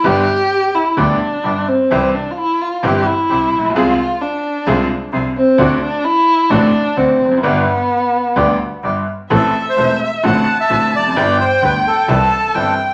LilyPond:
<<
  \new Staff \with { instrumentName = "Bandoneon" } { \time 4/4 \key g \mixolydian \tempo 4 = 130 r1 | r1 | r1 | r1 |
r1 | \key a \minor a'8. c''8. e''8 fis''8. e''8. d''8~ | d''8 c''8 b'8 a'2 r8 | }
  \new Staff \with { instrumentName = "Violin" } { \time 4/4 \key g \mixolydian g'4. e'8 d'4. c'8~ | c'8 d'16. f'32 e'8 f'8 g'8 e'4. | f'4 d'2 r8 c'8~ | c'8 d'8 e'4 d'4 c'4 |
b2. r4 | \key a \minor e''2 a''2 | g''2 a''4 g''4 | }
  \new Staff \with { instrumentName = "Bandoneon" } { \time 4/4 \key g \mixolydian <b d' g'>8 r4. <b d' g'>8 r8 <b d' g'>8 r8 | <c' e' g'>8 r4. <c' e' g'>8 r8 <c' e' g'>8 r8 | <c' f' aes'>8 r4. <c' f' aes'>8 r8 <c' f' aes'>8 r8 | <c' d' fis'>8 r4. <c' d' fis'>8 r8 <c' d' fis'>8 r8 |
<b d' g'>8 r4. <b d' g'>8 r8 <b d' g'>8 r8 | \key a \minor r1 | r1 | }
  \new Staff \with { instrumentName = "Upright piano" } { \clef bass \time 4/4 \key g \mixolydian <g,, g, d g b g'>8 r4. <d, d g b g'>8 r8 <g,, g,>8 r8 | <c, c e g c' g'>8 r4. <g,, g, e g c' g'>8 r8 <c, c>8 r32 a,,32 bes,,32 b,,32 | <c, c f aes c' aes'>8 r4. <c, c f aes c' aes'>8 r8 <c, c>8 r8 | <d, d a c' fis'>8 r4. <a,, a, d a c' fis'>8 r8 <d, d>8 r32 e,32 f,32 fis,32 |
<g,, g, d g b g'>8 r4. <d, d g b g'>8 r8 <g,, g,>8 r8 | \key a \minor <a,, a, e a c' a'>8 r8 <e,, e, e a c' a'>8 r8 <a,, a, d a c' fis'>8 r8 <a,, a, d a c' fis'>8 r32 e,32 f,32 fis,32 | <g,, g, d g b g'>8 r8 <d, d g b g'>8 r8 <c, c e g c' g'>8 r8 <g,, g, e g c' g'>8 r8 | }
  \new Staff \with { instrumentName = "Double bass" } { \clef bass \time 4/4 \key g \mixolydian g,,8 r4. d,8 r8 g,,8 r8 | c,8 r4. g,,8 r8 c,8 bes,,8 | c,8 r4. c,8 r8 c,8 r8 | d,8 r4. a,,8 r8 d,8 f,,8 |
g,,8 r4. d,8 r8 g,,8 r8 | \key a \minor a,,8 r8 e,,8 r8 a,,8 r8 a,,8 f,,8 | g,,8 r8 d,8 r8 c,8 r8 g,,8 r8 | }
>>